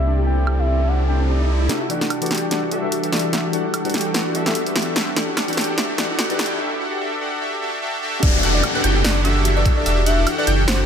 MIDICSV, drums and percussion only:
0, 0, Header, 1, 2, 480
1, 0, Start_track
1, 0, Key_signature, 1, "minor"
1, 0, Tempo, 408163
1, 75, Time_signature, 4, 2, 24, 8
1, 12770, End_track
2, 0, Start_track
2, 0, Title_t, "Drums"
2, 554, Note_on_c, 9, 76, 64
2, 671, Note_off_c, 9, 76, 0
2, 1992, Note_on_c, 9, 38, 51
2, 1992, Note_on_c, 9, 42, 85
2, 2110, Note_off_c, 9, 38, 0
2, 2110, Note_off_c, 9, 42, 0
2, 2233, Note_on_c, 9, 42, 68
2, 2350, Note_off_c, 9, 42, 0
2, 2368, Note_on_c, 9, 38, 41
2, 2474, Note_on_c, 9, 42, 82
2, 2474, Note_on_c, 9, 76, 60
2, 2485, Note_off_c, 9, 38, 0
2, 2592, Note_off_c, 9, 42, 0
2, 2592, Note_off_c, 9, 76, 0
2, 2608, Note_on_c, 9, 42, 49
2, 2660, Note_off_c, 9, 42, 0
2, 2660, Note_on_c, 9, 42, 65
2, 2713, Note_off_c, 9, 42, 0
2, 2713, Note_on_c, 9, 38, 51
2, 2713, Note_on_c, 9, 42, 52
2, 2759, Note_off_c, 9, 42, 0
2, 2759, Note_on_c, 9, 42, 65
2, 2794, Note_off_c, 9, 42, 0
2, 2794, Note_on_c, 9, 42, 83
2, 2831, Note_off_c, 9, 38, 0
2, 2911, Note_off_c, 9, 42, 0
2, 2953, Note_on_c, 9, 38, 53
2, 2953, Note_on_c, 9, 42, 78
2, 3071, Note_off_c, 9, 38, 0
2, 3071, Note_off_c, 9, 42, 0
2, 3193, Note_on_c, 9, 42, 69
2, 3310, Note_off_c, 9, 42, 0
2, 3434, Note_on_c, 9, 42, 74
2, 3552, Note_off_c, 9, 42, 0
2, 3569, Note_on_c, 9, 42, 61
2, 3675, Note_off_c, 9, 42, 0
2, 3675, Note_on_c, 9, 38, 56
2, 3675, Note_on_c, 9, 42, 53
2, 3721, Note_off_c, 9, 42, 0
2, 3721, Note_on_c, 9, 42, 67
2, 3757, Note_off_c, 9, 42, 0
2, 3757, Note_on_c, 9, 42, 83
2, 3792, Note_off_c, 9, 38, 0
2, 3874, Note_off_c, 9, 42, 0
2, 3916, Note_on_c, 9, 38, 61
2, 3916, Note_on_c, 9, 42, 86
2, 4034, Note_off_c, 9, 38, 0
2, 4034, Note_off_c, 9, 42, 0
2, 4155, Note_on_c, 9, 42, 71
2, 4273, Note_off_c, 9, 42, 0
2, 4395, Note_on_c, 9, 42, 83
2, 4395, Note_on_c, 9, 76, 61
2, 4513, Note_off_c, 9, 42, 0
2, 4513, Note_off_c, 9, 76, 0
2, 4528, Note_on_c, 9, 42, 51
2, 4581, Note_off_c, 9, 42, 0
2, 4581, Note_on_c, 9, 42, 66
2, 4635, Note_off_c, 9, 42, 0
2, 4635, Note_on_c, 9, 38, 63
2, 4635, Note_on_c, 9, 42, 51
2, 4678, Note_off_c, 9, 42, 0
2, 4678, Note_on_c, 9, 42, 65
2, 4713, Note_off_c, 9, 42, 0
2, 4713, Note_on_c, 9, 42, 83
2, 4752, Note_off_c, 9, 38, 0
2, 4831, Note_off_c, 9, 42, 0
2, 4873, Note_on_c, 9, 38, 66
2, 4873, Note_on_c, 9, 42, 80
2, 4991, Note_off_c, 9, 38, 0
2, 4991, Note_off_c, 9, 42, 0
2, 5113, Note_on_c, 9, 42, 71
2, 5231, Note_off_c, 9, 42, 0
2, 5246, Note_on_c, 9, 38, 62
2, 5351, Note_on_c, 9, 42, 81
2, 5364, Note_off_c, 9, 38, 0
2, 5469, Note_off_c, 9, 42, 0
2, 5486, Note_on_c, 9, 42, 63
2, 5593, Note_off_c, 9, 42, 0
2, 5593, Note_on_c, 9, 38, 70
2, 5593, Note_on_c, 9, 42, 50
2, 5638, Note_off_c, 9, 42, 0
2, 5638, Note_on_c, 9, 42, 70
2, 5673, Note_off_c, 9, 42, 0
2, 5673, Note_on_c, 9, 42, 84
2, 5710, Note_off_c, 9, 38, 0
2, 5790, Note_off_c, 9, 42, 0
2, 5831, Note_on_c, 9, 38, 75
2, 5831, Note_on_c, 9, 42, 83
2, 5949, Note_off_c, 9, 38, 0
2, 5949, Note_off_c, 9, 42, 0
2, 6074, Note_on_c, 9, 38, 79
2, 6074, Note_on_c, 9, 42, 67
2, 6191, Note_off_c, 9, 38, 0
2, 6191, Note_off_c, 9, 42, 0
2, 6314, Note_on_c, 9, 38, 81
2, 6314, Note_on_c, 9, 42, 81
2, 6314, Note_on_c, 9, 76, 61
2, 6432, Note_off_c, 9, 38, 0
2, 6432, Note_off_c, 9, 42, 0
2, 6432, Note_off_c, 9, 76, 0
2, 6448, Note_on_c, 9, 42, 51
2, 6501, Note_off_c, 9, 42, 0
2, 6501, Note_on_c, 9, 42, 66
2, 6555, Note_off_c, 9, 42, 0
2, 6555, Note_on_c, 9, 38, 77
2, 6555, Note_on_c, 9, 42, 51
2, 6599, Note_off_c, 9, 42, 0
2, 6599, Note_on_c, 9, 42, 64
2, 6634, Note_off_c, 9, 42, 0
2, 6634, Note_on_c, 9, 42, 81
2, 6673, Note_off_c, 9, 38, 0
2, 6751, Note_off_c, 9, 42, 0
2, 6794, Note_on_c, 9, 38, 83
2, 6794, Note_on_c, 9, 42, 81
2, 6911, Note_off_c, 9, 38, 0
2, 6911, Note_off_c, 9, 42, 0
2, 7035, Note_on_c, 9, 38, 88
2, 7035, Note_on_c, 9, 42, 68
2, 7153, Note_off_c, 9, 38, 0
2, 7153, Note_off_c, 9, 42, 0
2, 7275, Note_on_c, 9, 38, 83
2, 7275, Note_on_c, 9, 42, 81
2, 7393, Note_off_c, 9, 38, 0
2, 7393, Note_off_c, 9, 42, 0
2, 7409, Note_on_c, 9, 42, 63
2, 7516, Note_off_c, 9, 42, 0
2, 7516, Note_on_c, 9, 38, 91
2, 7516, Note_on_c, 9, 42, 51
2, 7559, Note_off_c, 9, 42, 0
2, 7559, Note_on_c, 9, 42, 68
2, 7595, Note_off_c, 9, 42, 0
2, 7595, Note_on_c, 9, 42, 84
2, 7633, Note_off_c, 9, 38, 0
2, 7713, Note_off_c, 9, 42, 0
2, 9675, Note_on_c, 9, 42, 88
2, 9675, Note_on_c, 9, 49, 109
2, 9677, Note_on_c, 9, 36, 115
2, 9793, Note_off_c, 9, 42, 0
2, 9793, Note_off_c, 9, 49, 0
2, 9794, Note_off_c, 9, 36, 0
2, 9915, Note_on_c, 9, 42, 71
2, 10033, Note_off_c, 9, 42, 0
2, 10155, Note_on_c, 9, 42, 82
2, 10155, Note_on_c, 9, 76, 61
2, 10272, Note_off_c, 9, 42, 0
2, 10272, Note_off_c, 9, 76, 0
2, 10396, Note_on_c, 9, 42, 69
2, 10513, Note_off_c, 9, 42, 0
2, 10636, Note_on_c, 9, 38, 121
2, 10636, Note_on_c, 9, 42, 83
2, 10754, Note_off_c, 9, 38, 0
2, 10754, Note_off_c, 9, 42, 0
2, 10877, Note_on_c, 9, 42, 71
2, 10994, Note_off_c, 9, 42, 0
2, 11115, Note_on_c, 9, 42, 79
2, 11233, Note_off_c, 9, 42, 0
2, 11355, Note_on_c, 9, 42, 66
2, 11356, Note_on_c, 9, 36, 60
2, 11472, Note_off_c, 9, 42, 0
2, 11473, Note_off_c, 9, 36, 0
2, 11596, Note_on_c, 9, 42, 86
2, 11713, Note_off_c, 9, 42, 0
2, 11836, Note_on_c, 9, 42, 70
2, 11953, Note_off_c, 9, 42, 0
2, 12074, Note_on_c, 9, 42, 84
2, 12074, Note_on_c, 9, 76, 63
2, 12192, Note_off_c, 9, 42, 0
2, 12192, Note_off_c, 9, 76, 0
2, 12315, Note_on_c, 9, 42, 71
2, 12432, Note_off_c, 9, 42, 0
2, 12556, Note_on_c, 9, 38, 122
2, 12556, Note_on_c, 9, 42, 86
2, 12674, Note_off_c, 9, 38, 0
2, 12674, Note_off_c, 9, 42, 0
2, 12770, End_track
0, 0, End_of_file